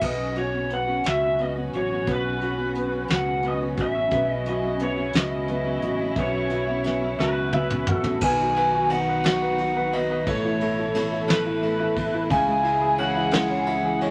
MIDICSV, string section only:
0, 0, Header, 1, 2, 480
1, 0, Start_track
1, 0, Tempo, 682594
1, 12, Time_signature, 6, 3, 24, 8
1, 9919, End_track
2, 0, Start_track
2, 0, Title_t, "String section"
2, 0, Program_c, 0, 48
2, 14, Note_on_c, 0, 47, 64
2, 14, Note_on_c, 0, 54, 60
2, 16, Note_on_c, 0, 61, 56
2, 17, Note_on_c, 0, 49, 56
2, 17, Note_on_c, 0, 66, 65
2, 2868, Note_off_c, 0, 66, 0
2, 2902, Note_on_c, 0, 64, 83
2, 5756, Note_off_c, 0, 47, 0
2, 5757, Note_off_c, 0, 54, 0
2, 5757, Note_off_c, 0, 61, 0
2, 5758, Note_off_c, 0, 49, 0
2, 5759, Note_off_c, 0, 64, 0
2, 5774, Note_on_c, 0, 54, 67
2, 5776, Note_on_c, 0, 63, 66
2, 5778, Note_on_c, 0, 47, 73
2, 5779, Note_on_c, 0, 51, 67
2, 5779, Note_on_c, 0, 66, 78
2, 7205, Note_off_c, 0, 54, 0
2, 7206, Note_off_c, 0, 63, 0
2, 7208, Note_off_c, 0, 51, 0
2, 7208, Note_off_c, 0, 66, 0
2, 7233, Note_on_c, 0, 57, 67
2, 7233, Note_on_c, 0, 64, 68
2, 7236, Note_on_c, 0, 52, 68
2, 7237, Note_on_c, 0, 69, 83
2, 8623, Note_off_c, 0, 47, 0
2, 8644, Note_off_c, 0, 57, 0
2, 8646, Note_off_c, 0, 52, 0
2, 8647, Note_off_c, 0, 69, 0
2, 8655, Note_on_c, 0, 52, 68
2, 8657, Note_on_c, 0, 49, 76
2, 8657, Note_on_c, 0, 56, 71
2, 8661, Note_on_c, 0, 68, 88
2, 9919, Note_off_c, 0, 49, 0
2, 9919, Note_off_c, 0, 52, 0
2, 9919, Note_off_c, 0, 56, 0
2, 9919, Note_off_c, 0, 64, 0
2, 9919, Note_off_c, 0, 68, 0
2, 9919, End_track
0, 0, End_of_file